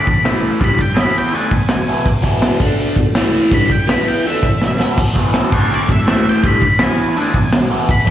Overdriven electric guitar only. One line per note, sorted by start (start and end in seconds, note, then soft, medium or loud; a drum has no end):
0.07 0.21 E2 medium
0.07 0.21 B2 medium
0.24 0.60 A2 medium
0.24 0.60 E3 loud
0.24 0.61 A3 loud
0.59 0.78 G2 loud
0.59 0.78 D3 loud
0.59 0.79 G3 loud
0.79 muted overdriven electric guitar stroke medium
0.94 1.32 E3 loud
0.94 1.32 B3 loud
0.94 1.32 E4 loud
1.34 1.51 D3 loud
1.34 1.51 A3 medium
1.34 1.52 D4 loud
1.52 1.66 E2 medium
1.52 1.67 B2 medium
1.69 1.84 E2 medium
1.69 1.85 B2 medium
1.88 2.06 E2 medium
1.88 2.06 B2 medium
1.88 2.06 E3 medium
2.23 2.60 E2 medium
2.23 2.59 B2 medium
2.23 2.60 E3 loud
2.60 2.96 D3 loud
2.60 2.97 A3 loud
2.60 2.97 D4 loud
2.96 3.12 E2 medium
2.96 3.12 B2 medium
3.15 3.52 A2 medium
3.15 3.52 E3 loud
3.15 3.52 A3 loud
3.52 3.69 G2 loud
3.52 3.70 D3 loud
3.52 3.71 G3 loud
3.70 muted overdriven electric guitar stroke medium
3.87 4.24 E3 medium
3.87 4.24 B3 loud
3.87 4.25 E4 loud
4.26 4.43 D3 medium
4.26 4.43 A3 loud
4.26 4.44 D4 loud
4.44 4.58 E2 medium
4.44 4.58 B2 medium
4.62 4.77 E2 medium
4.62 4.77 B2 medium
4.80 4.98 E2 medium
4.80 4.98 B2 medium
4.80 4.99 E3 loud
5.14 5.51 E2 loud
5.14 5.51 B2 loud
5.14 5.53 E3 medium
5.52 5.88 D3 medium
5.52 5.89 A3 medium
5.52 5.89 D4 medium
5.89 6.04 E2 medium
5.89 6.04 B2 medium
6.06 6.43 A2 medium
6.06 6.43 E3 medium
6.06 6.44 A3 loud
6.43 6.61 G2 loud
6.43 6.62 D3 loud
6.43 6.62 G3 loud
6.62 muted overdriven electric guitar stroke medium
6.80 7.16 E3 loud
6.80 7.16 B3 loud
6.80 7.17 E4 loud
7.16 7.34 D3 medium
7.16 7.35 A3 medium
7.16 7.36 D4 loud
7.36 7.50 E2 medium
7.36 7.51 B2 medium
7.53 7.68 E2 medium
7.53 7.68 B2 medium
7.70 7.88 E2 medium
7.70 7.89 B2 loud
7.70 7.89 E3 loud
8.05 8.10 E2 loud
8.05 8.10 B2 loud
8.05 8.10 E3 loud